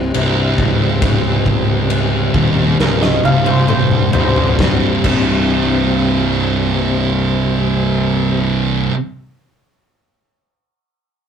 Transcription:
Already playing: C1 C3 G3 C4
0.14 C1 C2, crash
0.58 C#1 C#2, kick
1.02 kick, crash
1.46 kick
1.90 crash
2.34 D#1 D#2, kick
2.79 C#1 C#2 A#4, snare
3.02 D#5, snare
3.23 C1 C2 F5, high tom
3.46 C5, high tom
3.68 C5, mid tom
3.91 mid tom
4.13 C#1 C#2 C5, floor tom
4.36 floor tom
4.57 C1 C2 G2 C3 G3 C4, kick, snare
4.61 C3
5.03 C1 C2 G2, kick, crash
5.07 C3

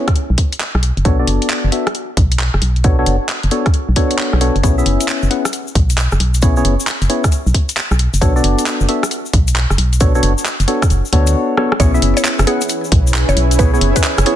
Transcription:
0.08 kick, cross-stick, closed hi-hat
0.16 closed hi-hat
0.30 B1
0.38 kick, open hi-hat
0.52 closed hi-hat
0.60 clap, closed hi-hat
0.75 B1, cross-stick
0.83 open hi-hat
0.97 F#1, closed hi-hat
1.05 B1 B3 D4 F#4 A4 C#5, kick, closed hi-hat
1.19 B3 D4 F#4 A4 D5
1.27 F#1, open hi-hat
1.42 open hi-hat
1.50 clap, closed hi-hat
1.64 F#1
1.72 B3 D4 F#4 A4 E5, open hi-hat
1.87 cross-stick, closed hi-hat
1.95 closed hi-hat
2.17 B1, kick, open hi-hat
2.32 closed hi-hat
2.39 clap, closed hi-hat
2.54 F#1, cross-stick
2.62 B1, open hi-hat
2.76 closed hi-hat
2.84 B3 D4 F#4 A4 C#5, kick, closed hi-hat
2.99 B3 D4 F#4 A4 C#5
3.06 F#1, open hi-hat
3.29 clap, closed hi-hat
3.43 F#1, open hi-hat
3.51 B3 D4 F#4 A4 C#5, open hi-hat
3.66 kick, cross-stick, closed hi-hat
3.74 closed hi-hat
3.89 B1
3.96 B3 D4 F#4 A4 C#5, kick, open hi-hat
4.11 closed hi-hat
4.19 clap, closed hi-hat
4.33 B1, cross-stick
4.41 B3 D4 F#4 A4 C#5, open hi-hat
4.56 F#1, closed hi-hat
4.63 B1 B3 C#4 E4 G#4 C#5, kick, closed hi-hat, shaker
4.78 B3 C#4 E4 G#4 E5, shaker
4.86 F#1, open hi-hat
5.00 open hi-hat, shaker
5.08 clap, closed hi-hat, shaker
5.22 F#1, shaker
5.30 B3 C#4 E4 G#4 F#5, open hi-hat
5.45 cross-stick, closed hi-hat, shaker
5.53 closed hi-hat, shaker
5.67 shaker
5.75 B1, kick, open hi-hat
5.90 closed hi-hat, shaker
5.98 clap, closed hi-hat, shaker
6.11 F#1, cross-stick, shaker
6.20 B1, open hi-hat
6.34 closed hi-hat, shaker
6.42 B3 C#4 E4 G#4 C#5, kick, closed hi-hat, shaker
6.56 B3 C#4 E4 G#4 C#5, shaker
6.65 F#1, open hi-hat
6.80 shaker
6.87 clap, closed hi-hat, shaker
7.02 F#1, open hi-hat, shaker
7.09 B3 C#4 E4 G#4 C#5, open hi-hat
7.24 kick, cross-stick, closed hi-hat, shaker
7.32 closed hi-hat, shaker
7.46 B1, shaker
7.54 kick, open hi-hat
7.69 closed hi-hat, shaker
7.77 clap, closed hi-hat, shaker
7.91 B1, cross-stick, shaker
7.99 open hi-hat
8.14 F#1, closed hi-hat, shaker
8.21 B1 B3 D4 F#4 A4 C#5, kick, closed hi-hat, shaker
8.36 B3 D4 F#4 A4 D5, shaker
8.44 F#1, open hi-hat
8.59 open hi-hat, shaker
8.66 clap, closed hi-hat, shaker
8.80 F#1, shaker
8.89 B3 D4 F#4 A4 E5, open hi-hat
9.03 cross-stick, closed hi-hat, shaker
9.11 closed hi-hat, shaker
9.26 shaker
9.33 B1, kick, open hi-hat
9.48 closed hi-hat, shaker
9.56 clap, closed hi-hat, shaker
9.70 F#1, cross-stick, shaker
9.78 B1, open hi-hat
9.93 closed hi-hat, shaker
10.00 B3 D4 F#4 A4 C#5, kick, closed hi-hat, shaker
10.15 B3 D4 F#4 A4 C#5, shaker
10.23 F#1, open hi-hat
10.38 shaker
10.45 clap, closed hi-hat, shaker
10.60 F#1, open hi-hat, shaker
10.68 B3 D4 F#4 A4 C#5, open hi-hat
10.82 kick, cross-stick, closed hi-hat, shaker
10.90 F#1, closed hi-hat, shaker
11.05 shaker
11.13 D2 B3 D4 F#4 A4 C#5, kick, open hi-hat
11.27 closed hi-hat, shaker
11.57 B3 D4 F#4 A4 C#5, cross-stick
11.72 cross-stick
11.80 B1 B3 C#4 E4 G#4 B4 C#5, kick, closed hi-hat, shaker
11.94 B3 C#4 E4 G#4 C#5 E5, shaker
12.02 F#1, open hi-hat
12.17 C#5, open hi-hat, shaker
12.24 G#5, clap, shaker
12.39 F#1, cross-stick, closed hi-hat, shaker
12.47 B3 C#4 E4 G#4 F#5, open hi-hat
12.61 closed hi-hat, shaker
12.69 closed hi-hat, shaker
12.79 B5
12.84 shaker
12.92 B1, kick, open hi-hat
13.07 shaker
13.14 clap, shaker
13.29 F#1 C#5, closed hi-hat, shaker
13.37 B1, open hi-hat
13.51 closed hi-hat, shaker
13.59 B3 C#4 E4 G#4 B4 C#5, kick, closed hi-hat, shaker
13.74 B3 C#4 E4 G#4 C#5, shaker
13.81 F#1, open hi-hat
13.96 B4, kick, closed hi-hat, shaker
14.03 clap, shaker
14.18 F#1, cross-stick, open hi-hat, shaker
14.26 B3 C#4 E4 G#4 C#5, open hi-hat

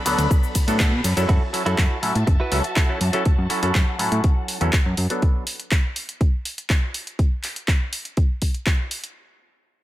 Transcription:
Already playing: A4 D5 B5
0.05 D2 F#3 B3 D4 A4, muted clean electric guitar stroke, open hi-hat, ride, cabasa
0.18 D2, muted clean electric guitar stroke, closed hi-hat, cabasa
0.31 kick, closed hi-hat, cabasa
0.43 cabasa
0.55 kick, open hi-hat, ride, cabasa
0.67 A2 F#3 B3 D4 A4, closed hi-hat, cabasa
0.80 B3 D4 F#4 A4, kick, clap, closed hi-hat, cabasa
0.92 B2
1.04 F#2, muted clean electric guitar stroke, open hi-hat, ride, cabasa
1.17 F#2 F#3 C#4 E4 A4, closed hi-hat, cabasa
1.29 F#2 E4 F#4 A4 E5 A5, kick, closed hi-hat
1.53 F#3 C#4 E4 A4, muted clean electric guitar stroke, open hi-hat
1.65 F#2 F#3 C#4 E4 F#4 A4, closed hi-hat
1.78 F#2, kick, clap, closed hi-hat
2.02 A2 F#3 C#4 E4 A4, open hi-hat
2.15 A2, closed hi-hat
2.27 F#1, muted clean electric guitar stroke, kick, closed hi-hat
2.40 E4 F#4 B4
2.52 C#2 F#3 C#4 E4 A4, open hi-hat
2.64 closed hi-hat
2.76 E4 F#4 A4, kick, clap, closed hi-hat
2.88 F#3 C#4 E4 A4
3.01 F#2, open hi-hat
3.13 F#3 C#4 E4 A4, muted clean electric guitar stroke, closed hi-hat
3.25 F#2 F#5, kick, closed hi-hat
3.38 F#2
3.49 F#3 C#4 E4 A4, open hi-hat
3.62 F#2 F#3 C#4 E4 A4, closed hi-hat
3.75 F#2, kick, clap, closed hi-hat
3.99 A2 F#3 C#4 E4 A4, open hi-hat
4.12 A2, closed hi-hat
4.24 kick, closed hi-hat
4.48 open hi-hat
4.61 E2 F#3 C#4 E4 A4, closed hi-hat
4.73 kick, clap, closed hi-hat
4.86 F#2
4.97 F#2, open hi-hat
5.10 F#3 B3 D4 A4, closed hi-hat
5.22 kick, closed hi-hat
5.47 open hi-hat
5.60 closed hi-hat
5.71 kick, clap, closed hi-hat
5.96 open hi-hat
6.09 closed hi-hat
6.21 kick, closed hi-hat
6.45 open hi-hat
6.58 closed hi-hat
6.70 kick, clap, closed hi-hat
6.94 open hi-hat
7.07 closed hi-hat
7.19 kick, closed hi-hat
7.44 clap, open hi-hat
7.56 closed hi-hat
7.68 kick, clap, closed hi-hat
7.93 open hi-hat
8.05 closed hi-hat
8.17 kick, closed hi-hat
8.42 kick, open hi-hat
8.54 closed hi-hat
8.67 kick, clap, closed hi-hat
8.91 open hi-hat
9.04 closed hi-hat

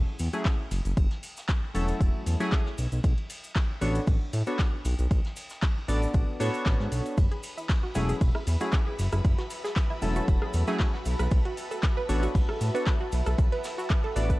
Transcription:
0.19 E2, open hi-hat, ride, cabasa
0.33 F#3 A3 C#4 E4 G#4, closed hi-hat, cabasa
0.45 kick, snare, clap, ride, cabasa
0.71 F#1, snare, open hi-hat, ride, cabasa
0.85 F#1, closed hi-hat, cabasa
0.97 F#1, kick, closed hi-hat, ride, cabasa
1.11 snare, closed hi-hat
1.23 open hi-hat, ride, cabasa
1.37 snare, cabasa
1.48 kick, snare, clap, closed hi-hat, ride, cabasa
1.74 E1 F#3 A3 C#4 E4 A4, open hi-hat, ride, cabasa
1.88 closed hi-hat, cabasa
2.00 E1, kick, closed hi-hat, ride, cabasa
2.26 E2, open hi-hat, ride, cabasa
2.40 F#3 A3 C#4 E4 G#4, closed hi-hat, ride, cabasa
2.51 kick, snare, clap, ride, cabasa
2.66 snare
2.78 B1, open hi-hat, ride, cabasa
2.92 B1, closed hi-hat, cabasa
3.04 B1, kick, closed hi-hat, ride, cabasa
3.18 closed hi-hat
3.30 open hi-hat, ride, cabasa
3.44 cabasa
3.56 kick, snare, clap, closed hi-hat, ride, cabasa
3.81 A1 B3 D4 F#4 A4 C#5, open hi-hat, ride, cabasa
3.95 closed hi-hat, ride, cabasa
4.07 A1, kick, closed hi-hat, open hi-hat, cabasa
4.32 A2, open hi-hat, ride, cabasa
4.47 B3 D4 F#4 A4 C#5, closed hi-hat, cabasa
4.59 kick, snare, clap, ride, cabasa
4.84 B1, snare, open hi-hat, ride, cabasa
4.99 B1, closed hi-hat, cabasa
5.10 B1, kick, closed hi-hat, ride, cabasa
5.25 snare, closed hi-hat
5.36 open hi-hat, ride, cabasa
5.50 snare, cabasa
5.62 kick, snare, clap, closed hi-hat, ride, cabasa
5.88 A1 B3 D4 F#4 A4 D5, open hi-hat, ride, cabasa
6.02 closed hi-hat, cabasa
6.14 A1, kick, closed hi-hat, ride, cabasa
6.40 A2 B3 D4 F#4 A4 C#5, open hi-hat, ride, cabasa
6.54 closed hi-hat, ride, cabasa
6.66 A1, kick, snare, clap, ride, cabasa
6.80 G#2, snare
6.92 B1, open hi-hat, cabasa
7.06 closed hi-hat, cabasa
7.17 F#1 F#4 B4 B5, kick, closed hi-hat, ride, cabasa
7.30 G#4 E5, closed hi-hat
7.43 B4, open hi-hat, ride, cabasa
7.57 E4, cabasa
7.69 kick, snare, clap, closed hi-hat, ride, cabasa
7.83 F#4
7.95 E1 F#3 A3 C#4 E4 G#4, open hi-hat, ride, cabasa
8.06 G#4 A5, closed hi-hat, ride, cabasa
8.21 E1, kick, closed hi-hat, open hi-hat, cabasa
8.35 E4, cross-stick
8.47 E2, open hi-hat, ride, cabasa
8.61 F#3 A3 C#4 E4 F#4 G#4, closed hi-hat, cabasa
8.72 kick, snare, clap, ride, cabasa
8.87 G#4
8.99 F#1, snare, open hi-hat, ride, cabasa
9.12 F#1 E4, cross-stick, closed hi-hat, cabasa
9.24 F#1, kick, closed hi-hat, ride, cabasa
9.38 F#4, snare, closed hi-hat
9.50 open hi-hat, ride, cabasa
9.64 G#4, snare, cabasa
9.76 kick, snare, clap, closed hi-hat, ride, cabasa
9.90 E4
10.02 E1 F#3 A3 C#4 E4 A4, open hi-hat, ride, cabasa
10.16 F#4, closed hi-hat, cabasa
10.28 E1, kick, closed hi-hat, ride, cabasa
10.42 G#4, cross-stick
10.53 E2, open hi-hat, ride, cabasa
10.67 F#3 A3 C#4 E4 G#4, closed hi-hat, ride, cabasa
10.79 kick, snare, clap, ride, cabasa
10.94 F#4, snare
11.05 B1, open hi-hat, ride, cabasa
11.19 B1 B4, cross-stick, closed hi-hat, cabasa
11.31 B1, kick, closed hi-hat, ride, cabasa
11.45 F#4, closed hi-hat
11.57 open hi-hat, ride, cabasa
11.71 A4, cabasa
11.83 kick, snare, clap, closed hi-hat, ride, cabasa
11.97 B4
12.09 A1 B3 D4 F#4 A4 C#5, open hi-hat, ride, cabasa
12.23 F#4, closed hi-hat, ride, cabasa
12.35 A1, kick, closed hi-hat, open hi-hat, cabasa
12.49 A4, cross-stick
12.61 A2, open hi-hat, ride, cabasa
12.75 B3 D4 F#4 A4 B4 C#5, closed hi-hat, cabasa
12.86 kick, snare, clap, ride, cabasa
13.01 F#4
13.11 B1, open hi-hat, ride, cabasa
13.26 B1 A4, cross-stick, closed hi-hat, cabasa
13.38 B1, kick, closed hi-hat, ride, cabasa
13.52 B4, closed hi-hat, ride
13.64 snare, open hi-hat, ride, cabasa
13.78 F#4, ride, cabasa
13.90 kick, clap, closed hi-hat, ride, cabasa
14.04 A4
14.16 A1 B3 D4 F#4 A4 D5, open hi-hat, ride, cabasa
14.30 B4, kick, closed hi-hat, cabasa

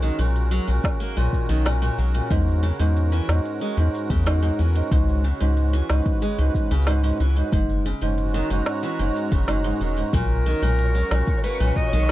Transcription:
Already playing: B1 G#3 C#4 F#4 A#4
0.02 D#3, shaker
0.19 B1 A#2, closed hi-hat, shaker
0.36 closed hi-hat, shaker
0.51 F#3, shaker
0.67 B1 A#2, shaker
0.84 kick, snare, closed hi-hat, shaker
1.00 A#3, closed hi-hat, shaker
1.17 B1 A#2
1.33 kick, shaker
1.49 B1 D#3, closed hi-hat, shaker
1.65 A#2, snare, closed hi-hat, shaker
1.82 A#2, shaker
1.98 B1 F#3, shaker
2.07 shaker
2.14 A#2, closed hi-hat
2.30 E2 G#2, kick, closed hi-hat, shaker
2.48 shaker
2.63 C#3, shaker
2.79 E2 G#2, closed hi-hat, shaker
2.97 closed hi-hat, shaker
3.12 E3, shaker
3.28 E2 G#2, snare, shaker
3.46 closed hi-hat, shaker
3.61 G#3, closed hi-hat, shaker
3.77 E2 G#2
3.94 shaker
4.10 E2 C#3, kick, shaker
4.26 G#2, snare, closed hi-hat, shaker
4.32 shaker
4.35 shaker
4.40 G#2, shaker
4.44 shaker
4.59 E2 E3, shaker
4.75 G#2, closed hi-hat, shaker
4.91 C#2 G#2, kick, closed hi-hat, shaker
5.09 shaker
5.24 C#3, shaker
5.40 C#2 G#2, shaker
5.57 closed hi-hat, shaker
5.73 E3, shaker
5.89 C#2 G#2, snare, shaker
5.94 B4
6.06 kick, closed hi-hat, shaker
6.22 G#3, closed hi-hat, shaker
6.38 C#2 G#2
6.55 kick, shaker
6.71 C#2 C#3, closed hi-hat, shaker
6.73 closed hi-hat
6.76 closed hi-hat
6.78 closed hi-hat
6.80 closed hi-hat
6.82 closed hi-hat
6.85 snare, closed hi-hat
6.87 G#2, closed hi-hat, shaker
7.03 G#2, shaker
7.20 C#2 E3, shaker
7.36 G#2, closed hi-hat, shaker
7.52 F#1 G#2 G#3, kick, closed hi-hat, shaker
7.69 shaker
7.85 C#3, shaker
8.01 F#1 G#2 C#4, closed hi-hat, shaker
8.18 closed hi-hat, shaker
8.23 F#4
8.34 D#3 A#5, shaker
8.50 F#1 G#2, shaker
8.66 snare
8.83 E3, closed hi-hat, shaker
8.99 F#1 G#2
9.16 shaker
9.32 F#1 C#3, kick, closed hi-hat, shaker
9.48 G#2, snare, closed hi-hat, shaker
9.64 G#2, shaker
9.80 E1 D#3, shaker
9.97 G#2, closed hi-hat, shaker
10.13 B1 A#2 A#4 C#5 C#6, kick, closed hi-hat, shaker
10.30 shaker
10.34 shaker
10.38 shaker
10.42 shaker
10.46 D#3, shaker
10.50 shaker
10.55 shaker
10.58 B1, closed hi-hat, shaker
10.62 A#2, shaker
10.79 closed hi-hat, shaker
10.87 shaker
10.95 F#3
11.11 B1 A#2, snare, shaker
11.27 kick, closed hi-hat, shaker
11.44 A#3 B4, closed hi-hat, shaker
11.60 B1 A#2
11.76 D#5, kick, shaker
11.93 B1 D#3, closed hi-hat, shaker

